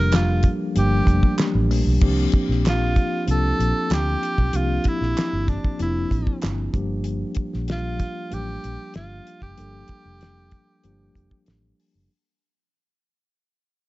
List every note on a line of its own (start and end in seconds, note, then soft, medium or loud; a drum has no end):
0.00 0.45 F1 medium
0.00 0.75 F3 medium
0.00 0.75 G3 medium
0.00 0.76 A#3 medium
0.00 0.76 D4 medium
0.00 0.76 G4 medium
0.00 2.03 A4 medium
0.00 0.17 A#4 loud
0.00 2.03 A#4 medium
0.12 0.50 F4 medium
0.12 snare loud
0.12 clap medium
0.12 closed hi-hat medium
0.43 kick medium
0.43 closed hi-hat medium
0.75 1.00 G1 medium
0.75 1.01 F3 medium
0.75 1.01 G3 medium
0.75 1.01 A#3 medium
0.75 1.02 D4 medium
0.75 1.02 G4 medium
0.75 1.36 G4 medium
0.75 closed hi-hat medium
1.05 1.19 F1 medium
1.05 1.84 F3 medium
1.05 1.84 G3 medium
1.05 1.13 A3 medium
1.05 1.84 D4 medium
1.05 1.84 G4 medium
1.05 kick medium
1.05 closed hi-hat medium
1.13 1.87 A#3 medium
1.23 kick medium
1.38 snare loud
1.38 clap medium
1.38 closed hi-hat medium
1.55 1.70 A1 medium
1.70 1.82 A#1 medium
1.70 open hi-hat medium
1.87 1.98 B1 medium
2.01 2.26 C2 medium
2.01 3.05 F3 medium
2.01 3.05 A#3 medium
2.01 3.05 C4 medium
2.01 3.06 D4 medium
2.01 3.06 G4 loud
2.01 kick loud
2.01 crash medium
2.32 kick loud
2.32 closed hi-hat medium
2.49 2.97 A#1 medium
2.49 snare soft
2.65 3.25 F4 loud
2.65 snare loud
2.65 clap medium
2.65 closed hi-hat medium
2.96 kick medium
2.96 closed hi-hat medium
3.26 3.52 C2 medium
3.26 4.30 F3 medium
3.26 4.30 A#3 medium
3.26 4.30 C4 medium
3.26 4.31 D4 medium
3.26 4.31 F4 medium
3.26 closed hi-hat medium
3.31 3.95 A4 loud
3.59 3.71 A#1 medium
3.59 closed hi-hat medium
3.90 4.15 D2 medium
3.90 4.58 G4 loud
3.90 snare loud
3.90 clap medium
3.90 closed hi-hat medium
4.23 closed hi-hat medium
4.38 4.50 B1 medium
4.38 kick medium
4.53 4.77 C2 medium
4.53 5.57 F3 medium
4.53 5.57 A#3 medium
4.53 5.57 C4 medium
4.53 5.57 D4 medium
4.53 4.89 F4 loud
4.53 5.58 G4 medium
4.53 closed hi-hat loud
4.84 5.51 E4 loud
4.84 kick medium
4.84 closed hi-hat medium
5.01 5.13 A#1 medium
5.01 snare soft
5.17 snare loud
5.17 clap medium
5.17 closed hi-hat medium
5.33 5.57 G1 medium
5.48 5.80 D4 medium
5.48 kick loud
5.48 snare soft
5.48 closed hi-hat medium
5.64 kick medium
5.79 6.04 F1 medium
5.79 6.72 F3 medium
5.79 6.72 A#3 medium
5.79 6.74 C4 medium
5.79 6.73 D4 medium
5.79 6.74 E4 medium
5.79 6.40 E4 medium
5.79 closed hi-hat medium
6.11 6.23 A1 medium
6.11 kick medium
6.11 closed hi-hat medium
6.27 kick medium
6.42 6.67 G1 medium
6.42 snare loud
6.42 clap medium
6.42 closed hi-hat medium
6.73 7.22 G1 loud
6.73 7.77 F3 medium
6.73 7.77 G3 medium
6.73 7.77 A#3 medium
6.73 7.77 D4 medium
6.73 7.78 G4 loud
6.73 kick loud
6.73 closed hi-hat medium
7.04 closed hi-hat medium
7.35 kick medium
7.35 closed hi-hat medium
7.53 8.02 A#1 medium
7.53 snare soft
7.68 8.36 F4 loud
7.68 snare loud
7.68 closed hi-hat medium
7.99 kick loud
7.99 snare soft
7.99 closed hi-hat medium
8.30 8.56 A1 medium
8.30 9.35 F3 medium
8.30 9.35 G3 medium
8.30 9.35 A#3 medium
8.30 9.35 D4 medium
8.30 9.35 G4 medium
8.30 8.96 G4 loud
8.30 closed hi-hat medium
8.64 8.76 A#1 medium
8.64 closed hi-hat medium
8.94 9.19 G1 medium
8.94 9.39 F4 loud
8.94 snare loud
8.94 closed hi-hat medium
9.27 closed hi-hat medium
9.42 9.54 F#1 medium
9.42 11.43 G4 loud
9.42 kick medium
9.57 9.82 G1 medium
9.57 10.61 F3 medium
9.57 10.61 G3 medium
9.57 10.61 A#3 medium
9.57 10.61 D4 medium
9.57 10.62 A4 medium
9.57 closed hi-hat loud
9.88 kick medium
9.88 closed hi-hat medium
10.05 10.53 F1 medium
10.21 snare loud
10.21 closed hi-hat medium
10.51 kick loud
10.51 closed hi-hat medium
10.84 11.08 G1 medium
10.84 11.88 F3 medium
10.84 11.88 G3 medium
10.84 11.88 A#3 medium
10.84 11.88 D4 medium
10.84 11.88 G4 medium
10.84 closed hi-hat medium
11.15 11.27 F1 medium
11.15 kick medium
11.15 closed hi-hat medium
11.31 kick loud
11.46 11.71 A1 medium
11.46 snare medium
11.46 closed hi-hat medium
11.80 open hi-hat medium
11.95 12.07 F#1 medium